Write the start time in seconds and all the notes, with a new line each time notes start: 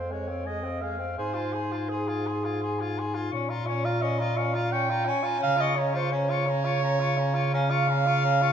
Already playing: F2 C4 C5 F5
0.11 G#3 C#5 G#5
0.29 C4 F5
0.45 G#3 D#5 G#5
0.63 C4 F5
0.82 G#3 F5 G#5
0.98 C4 F5
1.17 G#2 G#4 C5 C6
1.34 F4 G#5
1.53 G#4 C6
1.72 F4 G#5
1.89 G#4
1.93 C6
2.08 F4 G#5
2.27 G#4 C6
2.45 F4 G#5
2.62 G#4 C6
2.79 F4 G#5
2.98 G#4 C6
3.14 F4 G#5
3.32 A#2 C#4 C#6
3.49 F4 A#5
3.66 C#4 C#6
3.70 C#5
3.84 F4 F5 A#5
4.02 C#4 D#5 C#6
4.19 F4 A#5
4.36 C#4 F5 C#6
4.54 F4 A#5
4.72 C#4 G5 C#6
4.90 F4 A#5
5.05 C#4 G#5
5.09 C#6
5.23 F4 A#5
5.40 C#3 C#4 F5 A#5
5.57 F4 D#5
5.61 C#6
5.76 C#4 C#5 A#5
5.94 F4 C5 C#6
6.12 C#4 C#5 A#5
6.30 F4 C#6
6.47 C#4 A#5
6.64 F4 C#6
6.82 C#4 A#5
7.00 F4 C#6
7.17 C#4 A#5
7.34 F4 C#6
7.54 C#4 F5 A#5
7.70 F4 C#6
7.88 C#4 A#5
8.06 F4 C#6
8.25 C#4 A#5
8.42 F4 C#6